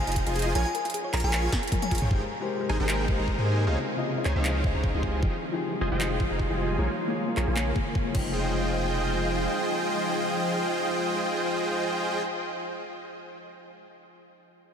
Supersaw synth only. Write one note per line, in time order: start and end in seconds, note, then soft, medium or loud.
0.07 0.24 F4 medium
0.07 0.24 G#4 medium
0.07 0.24 C5 medium
0.07 0.24 D#5 medium
0.07 0.24 A#5 medium
0.27 0.53 F4 medium
0.27 0.53 G#4 medium
0.27 0.53 C5 medium
0.27 0.53 D#5 medium
0.27 0.53 G#5 medium
0.55 0.67 F4 medium
0.55 0.67 G#4 medium
0.55 0.67 A#4 medium
0.55 0.67 C#5 medium
0.55 0.67 G#5 loud
1.14 1.22 F4 medium
1.14 1.22 G#4 medium
1.14 1.22 A#4 medium
1.14 1.22 C#5 medium
1.14 1.22 A#5 loud
1.24 1.50 F4 loud
1.24 1.50 G#4 medium
1.24 1.50 A#4 medium
1.24 1.50 C#5 medium
1.24 1.50 G#5 loud
1.91 1.99 F4 loud
1.91 1.99 G#4 medium
1.91 1.99 A#4 medium
1.91 1.99 C#5 medium
1.91 1.99 A#5 loud
2.02 2.09 F4 medium
2.02 2.09 G#4 medium
2.02 2.09 A#4 medium
2.02 2.09 C#5 medium
2.02 2.09 G5 medium
2.11 2.22 D#4 medium
2.11 2.22 G#4 medium
2.11 2.22 A#4 medium
2.11 2.22 C5 medium
2.11 2.22 G5 medium
2.69 2.77 D#4 medium
2.69 2.77 G#4 medium
2.69 2.77 A#4 medium
2.69 2.77 C5 medium
2.69 2.77 G#5 loud
2.80 3.06 D#4 medium
2.80 3.06 G#4 medium
2.80 3.06 A#4 medium
2.80 3.06 C5 medium
2.80 3.06 G5 loud
3.08 3.17 D#4 medium
3.08 3.17 G#4 medium
3.08 3.17 A#4 medium
3.08 3.17 C5 medium
3.08 3.17 F5 medium
3.19 3.36 D#4 medium
3.19 3.36 G#4 medium
3.19 3.36 A#4 medium
3.19 3.36 C5 medium
3.19 3.36 A#5 medium
3.38 3.65 D#4 medium
3.38 3.65 G#4 medium
3.38 3.65 A#4 medium
3.38 3.65 C5 medium
3.38 3.65 G#5 medium
3.67 3.78 D#4 medium
3.67 3.78 G#4 medium
3.67 3.78 C5 medium
3.67 3.78 C#5 medium
3.67 3.78 F5 medium
4.25 4.33 D#4 medium
4.25 4.33 G#4 medium
4.25 4.33 C5 medium
4.25 4.33 C#5 medium
4.25 4.33 G#5 loud
4.36 4.62 D#4 medium
4.36 4.62 G#4 medium
4.36 4.62 C5 medium
4.36 4.62 C#5 medium
4.36 4.62 F5 loud
4.64 4.73 D#4 medium
4.64 4.73 G#4 medium
4.64 4.73 C5 medium
4.64 4.73 C#5 medium
4.64 4.73 D#5 medium
4.75 4.92 D#4 medium
4.75 4.92 G#4 medium
4.75 4.92 C5 medium
4.75 4.92 C#5 medium
4.75 4.92 A#5 medium
4.94 5.21 F4 medium
4.94 5.21 G#4 medium
4.94 5.21 C5 medium
4.94 5.21 D#5 medium
4.94 5.21 G#5 medium
5.23 5.34 F4 medium
5.23 5.34 G#4 medium
5.23 5.34 C5 medium
5.23 5.34 D#5 medium
5.23 5.34 G5 medium
5.81 5.89 F4 medium
5.81 5.89 G#4 medium
5.81 5.89 C5 medium
5.81 5.89 D#5 medium
5.81 5.89 G#5 loud
5.92 6.18 F4 medium
5.92 6.18 G#4 medium
5.92 6.18 C5 medium
5.92 6.18 D#5 medium
5.92 6.18 G5 loud
6.20 6.29 F4 medium
6.20 6.29 G#4 medium
6.20 6.29 C5 medium
6.20 6.29 D#5 medium
6.20 6.29 F5 medium
6.31 6.48 F4 medium
6.31 6.48 G#4 medium
6.31 6.48 C5 medium
6.31 6.48 D#5 medium
6.31 6.48 A#5 medium
6.50 6.76 F4 medium
6.50 6.76 G#4 medium
6.50 6.76 C5 medium
6.50 6.76 D#5 medium
6.50 6.76 G#5 medium
6.79 6.90 F4 medium
6.79 6.90 G#4 medium
6.79 6.90 A#4 medium
6.79 6.90 C#5 medium
6.79 6.90 G#5 medium
7.37 7.45 F4 medium
7.37 7.45 G#4 medium
7.37 7.45 A#4 medium
7.37 7.45 C#5 medium
7.37 7.45 A#5 loud
7.47 7.74 F4 medium
7.47 7.74 G#4 medium
7.47 7.74 A#4 medium
7.47 7.74 C#5 medium
7.47 7.74 G#5 loud
8.15 12.22 F4 medium
8.15 12.22 G#4 medium
8.15 12.22 C5 medium
8.15 12.22 D#5 medium
8.15 12.22 G5 medium